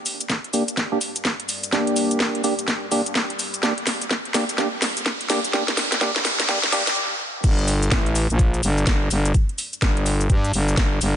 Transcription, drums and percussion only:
0.06 open hi-hat loud
0.06 cabasa medium
0.21 closed hi-hat medium
0.21 cabasa soft
0.30 kick loud
0.30 snare soft
0.30 cabasa soft
0.44 closed hi-hat soft
0.53 open hi-hat medium
0.53 cabasa medium
0.68 closed hi-hat medium
0.68 cabasa soft
0.77 kick loud
0.77 snare medium
0.77 cabasa soft
1.01 open hi-hat loud
1.01 cabasa medium
1.16 closed hi-hat medium
1.16 cabasa soft
1.25 kick loud
1.25 snare medium
1.25 cabasa soft
1.40 closed hi-hat medium
1.49 open hi-hat medium
1.49 cabasa medium
1.63 closed hi-hat medium
1.63 cabasa soft
1.72 kick loud
1.72 snare medium
1.72 cabasa soft
1.87 closed hi-hat medium
1.96 open hi-hat loud
1.96 cabasa medium
2.11 closed hi-hat medium
2.11 cabasa soft
2.20 kick loud
2.20 snare medium
2.20 cabasa soft
2.35 closed hi-hat soft
2.44 open hi-hat loud
2.44 cabasa medium
2.59 closed hi-hat medium
2.59 cabasa soft
2.68 kick loud
2.68 snare medium
2.68 cabasa soft
2.92 open hi-hat loud
2.92 cabasa medium
3.06 closed hi-hat medium
3.06 cabasa soft
3.15 kick loud
3.15 snare medium
3.15 cabasa soft
3.30 closed hi-hat medium
3.39 open hi-hat medium
3.39 cabasa medium
3.54 closed hi-hat medium
3.54 cabasa soft
3.63 kick loud
3.63 snare medium
3.63 cabasa soft
3.78 closed hi-hat soft
3.87 snare medium
3.87 open hi-hat loud
3.87 cabasa medium
4.02 closed hi-hat medium
4.02 cabasa soft
4.11 kick loud
4.11 snare medium
4.11 cabasa soft
4.25 closed hi-hat soft
4.34 snare medium
4.34 open hi-hat loud
4.34 cabasa medium
4.49 closed hi-hat medium
4.49 cabasa soft
4.58 kick loud
4.58 snare medium
4.58 cabasa soft
4.82 snare medium
4.82 open hi-hat loud
4.82 cabasa medium
4.97 closed hi-hat medium
4.97 cabasa soft
5.06 kick loud
5.06 snare medium
5.06 cabasa soft
5.21 closed hi-hat medium
5.30 snare medium
5.30 open hi-hat medium
5.30 cabasa medium
5.44 closed hi-hat medium
5.44 cabasa soft
5.53 kick loud
5.53 snare medium
5.53 cabasa soft
5.68 snare medium
5.68 closed hi-hat medium
5.77 snare medium
5.77 open hi-hat loud
5.77 cabasa medium
5.92 snare medium
5.92 closed hi-hat medium
5.92 cabasa soft
6.01 kick loud
6.01 snare loud
6.01 cabasa soft
6.16 snare medium
6.16 closed hi-hat soft
6.25 snare loud
6.25 open hi-hat medium
6.25 cabasa medium
6.40 snare medium
6.40 closed hi-hat medium
6.40 cabasa soft
6.49 kick loud
6.49 snare loud
6.49 cabasa soft
6.63 snare medium
6.63 closed hi-hat soft
6.72 snare loud
6.72 open hi-hat loud
6.72 cabasa medium
6.87 snare loud
6.87 closed hi-hat medium
6.87 cabasa soft
7.44 kick loud
7.44 closed hi-hat medium
7.44 crash loud
7.44 cabasa soft
7.59 closed hi-hat soft
7.68 open hi-hat loud
7.68 cabasa medium
7.83 closed hi-hat soft
7.83 cabasa soft
7.91 kick loud
7.91 snare loud
7.91 closed hi-hat medium
7.91 cabasa soft
8.06 closed hi-hat medium
8.15 open hi-hat medium
8.15 cabasa medium
8.30 closed hi-hat soft
8.30 cabasa soft
8.39 kick loud
8.39 closed hi-hat medium
8.39 cabasa soft
8.54 closed hi-hat soft
8.54 cabasa soft
8.63 open hi-hat loud
8.63 cabasa medium
8.78 cabasa soft
8.87 kick loud
8.87 snare loud
8.87 closed hi-hat medium
8.87 cabasa soft
9.11 open hi-hat medium
9.11 cabasa medium
9.25 closed hi-hat medium
9.25 cabasa soft
9.34 kick loud
9.34 closed hi-hat medium
9.34 cabasa soft
9.49 closed hi-hat soft
9.58 open hi-hat loud
9.58 cabasa medium
9.73 closed hi-hat soft
9.73 cabasa soft
9.82 kick loud
9.82 snare loud
9.82 closed hi-hat medium
9.82 cabasa soft
9.97 closed hi-hat medium
10.06 open hi-hat loud
10.06 cabasa medium
10.21 closed hi-hat soft
10.21 cabasa soft
10.30 kick loud
10.30 closed hi-hat medium
10.30 cabasa soft
10.45 closed hi-hat soft
10.45 cabasa soft
10.54 open hi-hat loud
10.54 cabasa medium
10.68 cabasa soft
10.77 kick loud
10.77 snare loud
10.77 closed hi-hat medium
10.77 cabasa soft
11.01 open hi-hat loud
11.01 cabasa medium

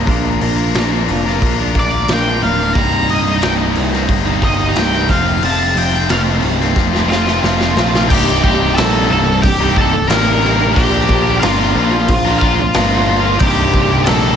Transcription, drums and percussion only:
0.07 kick loud
0.07 open hi-hat medium
0.41 open hi-hat medium
0.74 snare loud
0.74 open hi-hat medium
1.09 open hi-hat soft
1.27 snare soft
1.42 kick medium
1.42 open hi-hat medium
1.75 kick medium
1.75 open hi-hat medium
2.08 snare loud
2.08 open hi-hat medium
2.42 open hi-hat medium
2.75 kick loud
2.75 open hi-hat medium
3.09 open hi-hat medium
3.42 snare loud
3.42 open hi-hat medium
3.75 open hi-hat medium
3.93 snare soft
4.09 kick loud
4.09 open hi-hat medium
4.42 kick medium
4.42 open hi-hat medium
4.76 snare medium
4.76 open hi-hat medium
4.93 snare soft
5.09 kick medium
5.09 open hi-hat medium
5.43 open hi-hat medium
5.77 open hi-hat medium
6.09 snare loud
6.09 open hi-hat medium
6.42 open hi-hat medium
6.61 snare soft
6.76 kick loud
6.76 snare medium
6.95 snare medium
7.12 snare medium
7.28 snare medium
7.44 snare medium
7.61 snare medium
7.77 snare loud
7.95 snare loud
8.10 kick loud
8.10 crash loud
8.44 kick medium
8.77 snare loud
8.77 open hi-hat medium
9.43 kick loud
9.43 open hi-hat medium
9.76 kick medium
10.10 snare loud
10.10 open hi-hat medium
10.45 snare soft
10.76 kick loud
10.76 open hi-hat medium
11.09 kick medium
11.42 snare loud
11.42 open hi-hat medium
12.08 kick loud
12.08 open hi-hat medium
12.41 kick loud
12.74 snare loud
12.74 open hi-hat medium
13.39 kick loud
13.39 open hi-hat medium
13.74 kick medium
14.06 snare loud
14.06 open hi-hat medium

